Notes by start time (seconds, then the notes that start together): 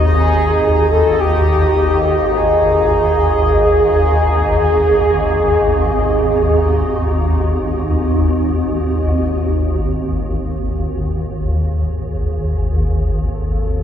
Already playing: G#1 D#2 D#4 D#5
0.05 G#4
0.91 A4
1.20 G4
2.37 G#4
9.27 G#1 D#2
10.43 G4
11.60 G#4
13.34 A4